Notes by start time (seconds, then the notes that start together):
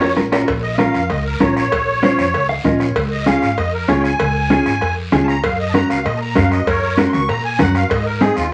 Already playing: F2 C#5
0.01 C#4 F4 A#4, low timbale
0.16 A#1 C#4 F4 A#4, bombo rim, high conga, short guiro
0.32 C#4 F4 A#4, bombo rim, low timbale, short guiro
0.48 A#1, bombo low, bombo rim, cowbell, high conga, long guiro
0.63 D#5
0.74 E5
0.78 C#4 F4 A#4 F5, bombo rim, high conga, short guiro
0.94 F2, bombo rim, short guiro
1.10 C#2 D#5, bombo rim, cowbell, high conga, long guiro
1.25 A#4
1.40 A#1 C#4 F4 A#4 C#5, bombo low, bombo rim, high conga, short guiro
1.52 C5
1.56 C#5, bombo rim, short guiro
1.72 A#1, bombo low, bombo rim, cowbell, high conga, long guiro
2.03 C#4 F4 C5, bombo rim, high conga, short guiro
2.18 F2, bombo rim, short guiro
2.34 C#2, bombo rim, cowbell, high conga, long guiro
2.49 F5
2.64 A#1 C#4 F4 A#4 D#5, bombo low, bombo rim, high conga, low conga, short guiro
2.80 C#5, bombo rim, short guiro
2.96 C#2, bombo low, bombo rim, cowbell, high conga, long guiro
3.12 D#5
3.22 C#4 E5
3.27 F4 G#4 F5, bombo rim, high conga, short guiro
3.42 G#1, bombo rim, short guiro
3.57 F2 D#5, bombo rim, cowbell, high conga, long guiro
3.74 A#4
3.88 C#2 C#4 F4 G#4 C#5, bombo low, bombo rim, high conga, short guiro
4.00 G5, bombo rim
4.04 G#5, short guiro
4.19 C#2, bombo low, bombo rim, cowbell, high conga, long guiro
4.50 C#4 F4 G#4, bombo rim, high conga, short guiro
4.66 G#1, bombo rim, short guiro
4.81 F2, bombo rim, cowbell, high conga, long guiro
5.12 C#2 C#4 F4 G#4, bombo low, bombo rim, high conga, low conga, short guiro
5.24 A5
5.28 A#5, bombo rim, short guiro
5.43 F#2 F5, bombo low, bombo rim, cowbell, high conga, long guiro
5.59 D#5
5.70 C#4 A5
5.74 F#4 A#4 A#5, bombo rim, high conga, short guiro
5.90 C#2 F5, bombo rim, short guiro
6.05 A#2 D#5, bombo rim, cowbell, high conga, long guiro
6.17 A5
6.21 A#5
6.35 F#2 C#4 F#4 A#4 F5, bombo low, bombo rim, high conga, short guiro
6.52 D#5, bombo rim, short guiro
6.66 F#2 A#4 C#5, bombo low, bombo rim, cowbell, high conga, long guiro
6.97 C#4 F#4 A#4, bombo rim, high conga, short guiro
7.09 C6
7.13 C#2 C#6, bombo rim, low conga, short guiro
7.29 A#2 A#5, bombo rim, cowbell, high conga, long guiro
7.45 G#5
7.59 F#2 C#4 F#4 A#4 F#5, bombo low, bombo rim, high conga, low conga, short guiro
7.75 F5, bombo rim, short guiro
7.90 G#2 D#5, bombo low, bombo rim, cowbell, high conga, long guiro
8.06 A#4
8.21 C4 D#4 G#4, bombo rim, high conga, short guiro
8.37 D#2 F4, bombo rim, short guiro